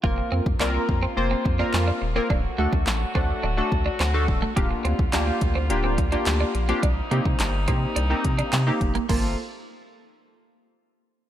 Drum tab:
CC |----------------|----------------|----------------|----------------|
HH |----------------|----------------|x-x-x-x-x-xxx-xx|x-x-x-x-x-xxx-xx|
CP |----x-------x---|----x-------x---|----x-------x---|----x-------x---|
SD |----o-------o---|----o-------o---|----o-------o---|----o-------o---|
BD |o--o--o---o-----|o--o--o---o---o-|o--o--o---o-----|o--o--o---o---o-|

CC |x---------------|
HH |----------------|
CP |----------------|
SD |----------------|
BD |o---------------|